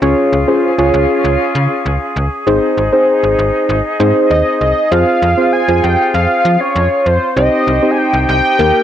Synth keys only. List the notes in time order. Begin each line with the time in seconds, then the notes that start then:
0.02 C#4 F4 G#4 C#5
0.48 C#4 F4 G#4 C5
0.78 C#4 F4 G#4 C#5
2.47 C4 D#4 G#4 C5
2.93 C4 D#4 G#4 C5
4.00 C4 D#4 G#4 C5
4.92 C4 F4 G#4 C5
5.38 C4 F4 G#4 C5
5.68 C4 F4 G#4 C5
7.37 C4 D#4 G4 C5
7.83 C4 D#4 G4 C5
8.59 A#3 D#4 G4 A#4